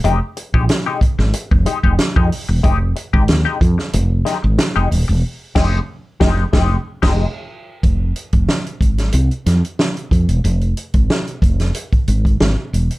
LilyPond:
<<
  \new Staff \with { instrumentName = "Clean electric guitar" } { \time 4/4 \key f \minor \tempo 4 = 92 <aes ees' g'>16 r8 <aes ees' g'>16 r16 <aes ees' g'>16 r4 <aes ees' g'>16 <aes ees' g'>16 r16 <aes ees' g'>16 r8 | <aes ees' g'>16 r8 <aes ees' g'>16 r16 <aes ees' g'>16 r4 <aes ees' g'>16 r8 <aes ees' g'>16 r8 | r8 <aes ees' g'>8 r8 <aes ees' g'>8 <aes ees' g'>8 r16 <aes ees' g'>8 r8. | r1 |
r1 | }
  \new Staff \with { instrumentName = "Fretless electric bass" } { \clef bass \time 4/4 \key f \minor f,,16 r8 bes,,16 r8. aes,,16 r16 f,,16 r16 f,,16 r16 f,16 r16 e,,16 | f,,8 r16 aes,,16 ees,16 r16 f,16 r16 f,,8 r16 aes,,16 r16 f,,16 ees,,16 e,,16 | r8 f,,8 r8 f,,8 f,,8 r16 f,,8 r8. | f,,8 r16 f,,16 r8 aes,,8 c,16 r16 f,16 r8. f,16 e,,16 |
f,,8 r16 aes,,16 r8 f,,8 r8 aes,,8 aes,,16 r16 e,,16 r16 | }
  \new DrumStaff \with { instrumentName = "Drums" } \drummode { \time 4/4 hh8 hh16 bd16 <hh sn>8 <hh bd>16 sn16 hh16 bd16 hh16 bd16 <hh sn>16 bd16 hho8 | <hh bd>8 hh16 bd16 <hh sn>8 <hh bd>16 sn16 hh8 <hh sn>8 <hh sn>8 hho8 | r8 <cymc bd sn>8 r8 <bd sn>8 <bd sn>8. <cymc bd sn>16 r4 | <hh bd>8 hh16 <hh bd>16 sn16 hh16 <hh bd>16 <hh sn>16 hh16 hh16 <hh sn>16 hh16 sn16 hh16 <hh bd>16 hh16 |
hh16 hh16 hh16 <hh bd>16 sn16 hh16 <hh bd>16 <hh sn>16 hh16 <hh bd>16 hh16 <hh bd>16 sn8 hh16 hh16 | }
>>